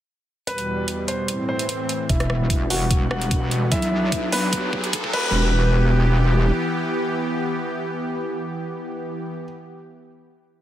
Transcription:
0.47 supersaw synth E2 B2 G3, grand piano B4, closed hi-hat
0.58 closed hi-hat
0.88 closed hi-hat
1.08 grand piano C5, closed hi-hat
1.28 supersaw synth A2 E3 C4, closed hi-hat
1.49 grand piano C5
1.59 closed hi-hat
1.69 closed hi-hat
1.89 closed hi-hat
2.09 wobble bass E1, supersaw synth E3 G3 B3, grand piano E4 E5, kick, closed hi-hat, riser
2.20 cross-stick, closed hi-hat
2.30 cross-stick
2.50 wobble bass E1, kick, closed hi-hat
2.70 grand piano F#4 F#5, open hi-hat
2.91 kick, closed hi-hat
3.11 wobble bass E1, grand piano F#4 F#5, cross-stick
3.21 closed hi-hat
3.31 wobble bass E1, kick, closed hi-hat
3.51 closed hi-hat
3.72 wobble bass B1, supersaw synth F#3 D4, grand piano E4 E5, kick, closed hi-hat
3.82 closed hi-hat
4.12 wobble bass B1, kick, closed hi-hat
4.32 grand piano B3 B4, open hi-hat
4.53 kick, closed hi-hat
4.73 wobble bass B1, kick
4.84 closed hi-hat
4.93 wobble bass B1, kick, closed hi-hat
5.04 kick
5.13 wobble bass E1, supersaw synth E3 B3 G4, grand piano B4, kick, crash

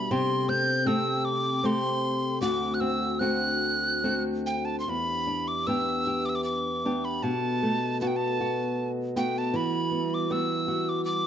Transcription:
Already playing: nylon-string guitar B2 G3 D4 G4, tin whistle B5
0.11 nylon-string guitar C3 G4, glass harmonica C4 A4 G5, tin whistle C6
0.49 nylon-string guitar C4, tin whistle G6
0.86 nylon-string guitar A3 C4 G4, tin whistle E6
1.25 tin whistle D6
1.64 nylon-string guitar A3 C4 G4, tin whistle C6
2.41 nylon-string guitar D2 F#4, glass harmonica D4 C5 F#5, tin whistle D6
2.74 tin whistle F#6
2.80 nylon-string guitar C4, tin whistle E6
3.19 nylon-string guitar A3 C4 F#4, tin whistle F#6
4.04 nylon-string guitar A3 C4 F#4
4.46 tin whistle G5
4.65 tin whistle A5
4.80 tin whistle C6
4.86 nylon-string guitar E2, glass harmonica D4 G4 E5, tin whistle B5
5.27 nylon-string guitar D4
5.48 tin whistle D6
5.67 nylon-string guitar B3 D4 G4, tin whistle E6
6.07 nylon-string guitar G4
6.26 tin whistle D6 E6
6.35 tin whistle D6
6.44 tin whistle D6
6.85 nylon-string guitar B3 D4 G4
7.05 tin whistle B5
7.23 nylon-string guitar B2, glass harmonica B3 A4 D#5, tin whistle A5
7.63 nylon-string guitar A3
8.01 nylon-string guitar A3 B3 F#4, tin whistle A5
8.07 tin whistle G5
8.16 tin whistle A5
8.41 nylon-string guitar F#4
9.16 nylon-string guitar A3 B3 F#4, tin whistle G5
9.38 tin whistle A5
9.54 nylon-string guitar E3, glass harmonica G3 F#4 E5, tin whistle B5
9.91 nylon-string guitar B3
10.14 tin whistle D6
10.30 nylon-string guitar G3 B3 F#4, tin whistle E6
10.68 nylon-string guitar F#4
10.89 tin whistle D6
11.05 tin whistle D6

